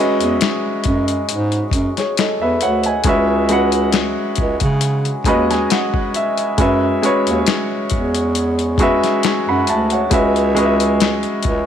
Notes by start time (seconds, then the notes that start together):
Already playing: G#3 C#4 F#4 E5
0.00 B4 D#5
0.20 E2, closed hi-hat
0.41 snare, closed hi-hat
0.84 F#2, kick, closed hi-hat
1.08 closed hi-hat
1.29 G#2, closed hi-hat
1.52 closed hi-hat
1.71 F#2, kick, closed hi-hat
1.97 G#4 C#5, snare, closed hi-hat
2.17 A4 D#5, snare, closed hi-hat
2.42 E2 B4 E5
2.61 D2 C#5 F#5, closed hi-hat
2.83 D#5 G#5, closed hi-hat
3.04 C#2 G#3 C#4 F#4, kick, closed hi-hat
3.08 B4 E5
3.49 G#3 C#4 F#4 B4 F#5, closed hi-hat
3.72 closed hi-hat
3.92 snare, closed hi-hat
4.36 C#2, kick, closed hi-hat
4.60 C#3, kick, closed hi-hat
4.81 closed hi-hat
5.05 closed hi-hat
5.24 D#2 G#3 C#4 F#4 B4 B5, kick, closed hi-hat
5.29 D#5
5.51 G#5, snare, closed hi-hat
5.70 F#5, snare, closed hi-hat
5.94 kick
6.14 E5, closed hi-hat
6.38 closed hi-hat
6.58 F#2 G#3 C#4 F#4 B4 E5, kick, closed hi-hat
7.02 G#3 C#4 F#4 B4 C#5, closed hi-hat
7.27 D#2, closed hi-hat
7.46 snare, closed hi-hat
7.90 E2, kick, closed hi-hat
8.15 closed hi-hat
8.35 closed hi-hat
8.59 closed hi-hat
8.78 G#3 C#4 F#4 B4, kick, closed hi-hat
8.83 E5
9.04 snare, closed hi-hat
9.23 G#5 C#6, snare, closed hi-hat
9.49 F#2 F#5 B5
9.67 D2 E5 A5, closed hi-hat
9.90 C#5 F#5, closed hi-hat
10.10 C#2 G#3 C#4 F#4 B4 E5, kick, closed hi-hat
10.36 closed hi-hat
10.55 G#3 C#4 F#4 B4, closed hi-hat
10.59 D#5
10.65 E5
10.80 closed hi-hat
11.00 snare, closed hi-hat
11.23 closed hi-hat
11.43 C#2, kick, closed hi-hat